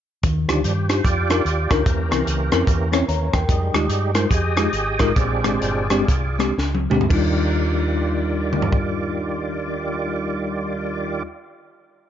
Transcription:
0.23 fingered electric bass D#2, tine electric piano D#3, kick, closed hi-hat
0.48 fingered electric bass D2, tonewheel organ F3 G3 D4, tine electric piano D4 D#4 F4 G4, cross-stick, closed hi-hat
0.64 fingered electric bass G2, tonewheel organ G4, closed hi-hat
0.89 tine electric piano D4 D#4 F4 G4, tonewheel organ C5, cross-stick, closed hi-hat
1.04 fingered electric bass F2, tonewheel organ F4 G4 D5, kick, closed hi-hat
1.30 tine electric piano D4 D#4 F4 A#4, cross-stick, closed hi-hat
1.45 fingered electric bass D#2, closed hi-hat
1.70 fingered electric bass D2, tonewheel organ C#4 G4 A#4, tine electric piano D4 D#4 F4 A#4, kick, cross-stick, closed hi-hat
1.85 fingered electric bass E2, tonewheel organ E3 A#3 C#4, tine electric piano E3, kick, closed hi-hat
2.11 fingered electric bass C2, tine electric piano C4 C#4 E4 A#4, cross-stick, closed hi-hat
2.27 fingered electric bass C#2, closed hi-hat
2.52 fingered electric bass F2, tine electric piano C4 C#4 E4 A#4, cross-stick, closed hi-hat
2.67 fingered electric bass E2, kick, closed hi-hat
2.92 tine electric piano C4 C#4 E4 C#5, cross-stick, closed hi-hat
3.08 fingered electric bass D#2, tine electric piano C#5 A#5, closed hi-hat
3.33 fingered electric bass E2, tine electric piano A#4 G5, kick, cross-stick, closed hi-hat
3.47 fingered electric bass F2, tonewheel organ G3 G#3 D#4, kick, closed hi-hat
3.74 fingered electric bass D#2, tine electric piano G#3 D#4 F4 G4, cross-stick, closed hi-hat
3.88 fingered electric bass G2, tonewheel organ G4, closed hi-hat
4.15 tine electric piano G#3 D#4 F4 A#4, tonewheel organ C5, cross-stick, closed hi-hat
4.29 fingered electric bass F2, tonewheel organ G4 G#4 D#5, kick, closed hi-hat
4.56 tine electric piano G#3 D#4 F4 G4, cross-stick, closed hi-hat
4.73 fingered electric bass G#1, closed hi-hat
4.99 fingered electric bass A1, tine electric piano G#3 D#4 F4 A#4, kick, cross-stick, closed hi-hat
5.15 fingered electric bass A#1, tine electric piano A#2, tonewheel organ G#3 C4 D4 F4 G4 G#4 D5, kick, closed hi-hat
5.44 fingered electric bass G#1, tine electric piano G#3 C4 D4 G4, cross-stick, closed hi-hat
5.61 fingered electric bass G1, closed hi-hat
5.90 tonewheel organ G3 G#3 C4 D4, tine electric piano G#3 C4 D4 G4, cross-stick, closed hi-hat
6.08 fingered electric bass C2, kick, closed hi-hat
6.39 tine electric piano G#3 C4 D4 G4, cross-stick, closed hi-hat
6.58 fingered electric bass C#2, snare
6.75 high tom
6.90 fingered electric bass D2, tine electric piano G#3 C4 D4 G4, mid tom
7.01 floor tom
7.09 fingered electric bass D#2, tine electric piano D#2 G3 D4 D#4, tonewheel organ D#3 G3 F4 D5, kick, crash
7.13 tine electric piano F4
8.53 mid tom
8.62 floor tom
8.72 kick

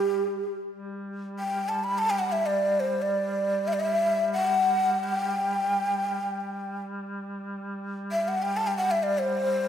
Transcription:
Already playing: duduk G3, ney G4
0.70 duduk G3
1.39 ney G5
1.69 ney A5
1.84 ney B5
1.98 ney A5
2.10 ney G5
2.19 ney F#5
2.32 ney E5
2.46 ney D5
2.80 ney C5
3.02 ney D5
3.68 ney E5
3.73 ney D5
3.80 ney E5
4.33 ney F#5
5.03 ney G5
6.21 duduk G3
8.12 ney E5
8.28 ney F#5
8.42 ney G5
8.57 ney A5
8.67 ney G5
8.77 ney F#5
8.91 ney E5
9.03 ney D5
9.19 ney C5

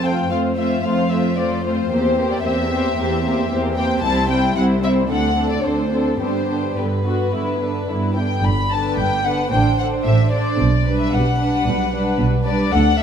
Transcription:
Already playing: cello section F2
0.03 viola section A3 C4, violin section F4 C5 G5
0.30 cello section F2, viola section A3 C4, violin section F4 C5 F5
0.57 viola section A3 C4, violin section F4 C5 E5
0.84 cello section F2, viola section A3 C4, violin section F4 C5 F5
1.11 viola section A3 C4, violin section F4 C5 E5
1.37 cello section F2, viola section A3 C4, violin section F4 C5 D5
1.64 viola section A3 C4, violin section F4 C5
1.91 cello section E2, viola section A#3 C4, violin section G4 C5
2.18 viola section A#3 C4, violin section G4 C5
2.31 violin section D5
2.44 cello section E2, viola section A#3 C4, violin section G4 C5 E5
2.71 viola section A#3 C4, violin section G4 C5
2.98 cello section E2, viola section A#3 C4, violin section G4 C5
3.26 viola section A#3 C4, violin section G4 C5
3.51 cello section E2, viola section A#3 C4, violin section G4 C5
3.77 viola section A#3 C4, violin section G4 C5 G5
4.03 cello section C2, viola section G3 C4, violin section E4 C5 A5
4.30 viola section G3 C4, violin section E4 C5 G5
4.56 cello section C2, viola section G3 C4, violin section E4 C5 F#5
4.83 viola section G3 C4, violin section E4 C5 E5
5.09 cello section D2, viola section D3 C4, violin section D4 A4 F#5
5.37 viola section D3 C4, violin section D4 A4
5.50 violin section D5
5.63 cello section D2, viola section D3 C4, violin section D4 A4 C5
5.91 viola section D3 C4, violin section D4 A4
6.07 violin section A4
6.20 cello section G2, viola section D3 B3, violin section D4 G4 C5
6.48 viola section D3 B3, violin section D4 G4
6.76 cello section G2, viola section D3 B3, violin section G4 B4
7.05 viola section D3 B3, violin section F#4
7.33 cello section G2, viola section D3 B3, violin section E4
7.61 viola section D3 B3, violin section D4
7.88 cello section G2, viola section D3 B3, violin section E4
8.16 viola section D3 B3, violin section D4 G5
8.43 double bass section G1, cello section G2, violin section B5
8.71 viola section D3 B3, violin section D4 B4 A5
8.97 double bass section G1, cello section G2, violin section G5
9.24 viola section D3 B3, violin section D4 B4 F#5
9.51 double bass section A1, cello section A2, viola section D3 D4, violin section D4 C5 G5
9.78 viola section D3 D4, violin section D4 C5 F#5
10.05 double bass section A1, cello section A2, violin section E5
10.32 viola section D3 D4, violin section D4 C5 D5
10.58 double bass section B1, cello section B2
10.86 viola section G3 D4, violin section D4 B4
11.00 violin section E5
11.12 double bass section B1, cello section B2, violin section F#5
11.40 viola section G3 D4, violin section D4 B4
11.66 double bass section B1, cello section B2
11.93 viola section G3 D4, violin section D4 B4
12.19 double bass section B1, cello section B2
12.46 viola section G3 D4, violin section D4 B4 D5
12.73 double bass section D2, cello section D2, viola section A3 D4, violin section D4 A4 F#5
13.00 viola section A3 D4, violin section E5

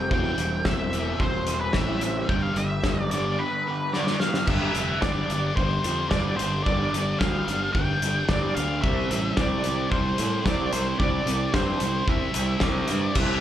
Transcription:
Already playing: fingered electric bass F1, overdriven electric guitar F3 G3 C4
0.11 fingered electric bass E1, distorted electric guitar E3 G3 C4, overdriven electric guitar E3, lead electric guitar G5, kick
0.38 fingered electric bass E1, distorted electric guitar E3 G3, closed hi-hat
0.65 fingered electric bass E1, distorted electric guitar E3 G3, overdriven electric guitar C4, lead electric guitar E5, kick, snare
0.93 distorted electric guitar E3 G3 C4, overdriven electric guitar E3, closed hi-hat
1.20 fingered electric bass E1, distorted electric guitar E3 G3, overdriven electric guitar C4, lead electric guitar C5, kick
1.47 distorted electric guitar E3 G3, overdriven electric guitar E3, closed hi-hat
1.61 lead electric guitar B4
1.73 fingered electric bass A1, distorted electric guitar E3 G3 C4, lead electric guitar E5, kick, snare
1.77 overdriven electric guitar G3
2.01 distorted electric guitar E3 G3, overdriven electric guitar C4, closed hi-hat
2.29 fingered electric bass G1, distorted electric guitar G2 D3 G3, overdriven electric guitar G2, lead electric guitar G5, kick
2.42 lead electric guitar F5
2.56 fingered electric bass G1, distorted electric guitar G2 D3, lead electric guitar E5, closed hi-hat
2.83 fingered electric bass G1, distorted electric guitar G2 D3, overdriven electric guitar B3, kick, snare
3.01 lead electric guitar D5
3.11 fingered electric bass G1, distorted electric guitar G2 D3 G3, overdriven electric guitar D3, lead electric guitar D5, closed hi-hat
3.39 distorted electric guitar G2 D3, overdriven electric guitar B3, lead electric guitar B4
3.67 distorted electric guitar G2 D3, overdriven electric guitar D3
3.93 distorted electric guitar G2 D3 G3, overdriven electric guitar G3, lead electric guitar D5, snare
4.07 snare
4.20 distorted electric guitar G2 D3, overdriven electric guitar B3, lead electric guitar F5, snare
4.34 snare
4.47 fingered electric bass G1, overdriven electric guitar G2 D3 G3, distorted electric guitar G2, lead electric guitar E5, kick, crash
4.75 fingered electric bass F1, overdriven electric guitar G2 D3, distorted electric guitar G3, closed hi-hat
5.02 fingered electric bass G1, overdriven electric guitar G2 D3 G3, distorted electric guitar C4, lead electric guitar D5, kick, snare
5.30 fingered electric bass G1, overdriven electric guitar G2 D3, distorted electric guitar D4, closed hi-hat
5.56 fingered electric bass G1, overdriven electric guitar G2 D3, distorted electric guitar G3, lead electric guitar C5, kick
5.84 fingered electric bass F2, overdriven electric guitar G2 D3, distorted electric guitar D4, closed hi-hat
6.10 fingered electric bass G1, overdriven electric guitar G2, distorted electric guitar C4, lead electric guitar D5, kick, snare
6.14 overdriven electric guitar D3 G3
6.37 fingered electric bass G1, distorted electric guitar D4, lead electric guitar C5, closed hi-hat
6.42 overdriven electric guitar G2 D3
6.64 fingered electric bass G1, distorted electric guitar G2, lead electric guitar D5, kick
6.68 overdriven electric guitar G2 D3 G3
6.94 fingered electric bass G1, overdriven electric guitar G2 D3, distorted electric guitar G3, closed hi-hat
7.19 fingered electric bass D2, distorted electric guitar C4, lead electric guitar F5, kick, snare
7.23 overdriven electric guitar G2 D3 G3
7.48 fingered electric bass G1, distorted electric guitar D4, closed hi-hat
7.52 overdriven electric guitar G2 D3
7.74 fingered electric bass G1, distorted electric guitar G3, lead electric guitar G5, kick
7.79 overdriven electric guitar G2 D3
8.02 fingered electric bass G1, overdriven electric guitar G2 D3, distorted electric guitar D4, closed hi-hat
8.29 fingered electric bass G1, overdriven electric guitar G2 D3, distorted electric guitar C4, lead electric guitar D5, kick, snare
8.33 overdriven electric guitar G3
8.55 fingered electric bass D2, overdriven electric guitar G2, distorted electric guitar D4, lead electric guitar F5, closed hi-hat
8.59 overdriven electric guitar D3
8.82 fingered electric bass C2, distorted electric guitar C3, lead electric guitar E5, kick
8.86 overdriven electric guitar C3 G3 C4
9.11 fingered electric bass A1, overdriven electric guitar C3 G3, distorted electric guitar G3, closed hi-hat
9.37 fingered electric bass C2, overdriven electric guitar C3 G3 C4, distorted electric guitar C4, lead electric guitar D5, kick, snare
9.64 fingered electric bass C2, overdriven electric guitar C3 G3, distorted electric guitar E4, closed hi-hat
9.91 fingered electric bass C2, overdriven electric guitar C3 G3, distorted electric guitar G3, lead electric guitar C5, kick
10.18 fingered electric bass A2, overdriven electric guitar C3 G3, distorted electric guitar E4, closed hi-hat
10.46 fingered electric bass C2, overdriven electric guitar C3 G3 C4, distorted electric guitar C4, lead electric guitar D5, kick, snare
10.73 fingered electric bass C2, overdriven electric guitar C3 G3, distorted electric guitar E4, lead electric guitar C5, closed hi-hat
10.99 fingered electric bass C2, overdriven electric guitar C3 G3 C4, distorted electric guitar C3, lead electric guitar D5, kick
11.26 fingered electric bass C2, overdriven electric guitar C3 G3, distorted electric guitar G3, closed hi-hat
11.54 fingered electric bass G2, overdriven electric guitar C3 G3 C4, distorted electric guitar C4, lead electric guitar C5, kick, snare
11.80 fingered electric bass C2, overdriven electric guitar C3 G3, distorted electric guitar E4, closed hi-hat
12.08 fingered electric bass C2, overdriven electric guitar C3 G3, distorted electric guitar G3, lead electric guitar E5, kick
12.34 fingered electric bass C2, overdriven electric guitar C3 G3, distorted electric guitar E4, closed hi-hat
12.60 fingered electric bass C2, overdriven electric guitar C3 G3 C4, distorted electric guitar C4, lead electric guitar D5 E5, glockenspiel D6, kick, snare
12.88 fingered electric bass G2, overdriven electric guitar C3 G3, distorted electric guitar E4, closed hi-hat
13.14 fingered electric bass C2, overdriven electric guitar C3 E3 G3 C4 E4, distorted electric guitar C3 E3 G3 C4 E4, lead electric guitar E5, glockenspiel E6, kick, crash

